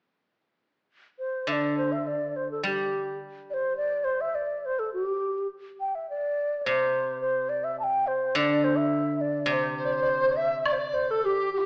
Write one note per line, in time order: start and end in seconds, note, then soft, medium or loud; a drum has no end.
1.19 1.49 C5 medium
1.47 3.20 D3 soft
1.47 1.53 E5 medium
1.52 1.77 D5 medium
1.78 1.93 C5 medium
1.92 2.09 E5 medium
2.07 2.38 D5 medium
2.36 2.51 C5 medium
2.51 2.65 A4 medium
2.63 4.33 G3 soft
2.63 3.17 G4 medium
3.50 3.76 C5 medium
3.50 3.55 D5 medium
3.77 4.06 D5 medium
4.04 4.22 C5 medium
4.21 4.36 E5 medium
4.35 4.67 D5 medium
4.65 4.81 C5 medium
4.79 4.93 A4 medium
4.93 5.47 G4 medium
5.80 5.96 G5 medium
5.95 6.09 E5 medium
6.09 6.61 D5 medium
6.61 7.20 C5 medium
6.61 6.67 D5 medium
6.66 8.37 C3 medium
7.21 7.50 C5 medium
7.49 7.65 D5 medium
7.64 7.79 E5 medium
7.79 8.08 G5 medium
7.79 7.84 A5 medium
8.07 8.37 C5 medium
8.35 10.05 D3 medium
8.35 8.66 D5 medium
8.64 8.79 C5 medium
8.77 9.22 E5 medium
9.21 9.48 D5 medium
9.46 11.23 C3 medium
9.46 9.54 D5 medium
9.53 9.76 C5 medium
9.77 9.86 C5 medium
9.77 10.38 C5 medium
9.84 9.94 D5 medium
9.93 10.03 C5 medium
10.02 10.10 D5 medium
10.09 10.37 C5 medium
10.35 10.61 E5 medium
10.35 10.67 E5 medium
10.61 10.77 D5 medium
10.61 10.66 E5 soft
10.66 10.74 D5 medium
10.66 high woodblock medium
10.72 10.80 C5 medium
10.78 11.07 D5 medium
10.78 10.95 D5 medium
10.94 11.12 C5 medium
11.09 11.26 A4 medium
11.09 11.24 A4 medium
11.25 11.52 G4 medium
11.25 11.53 G4 medium
11.52 11.66 G4 medium
11.52 11.59 G4 medium
11.58 11.61 E4 medium
11.58 11.66 G4 medium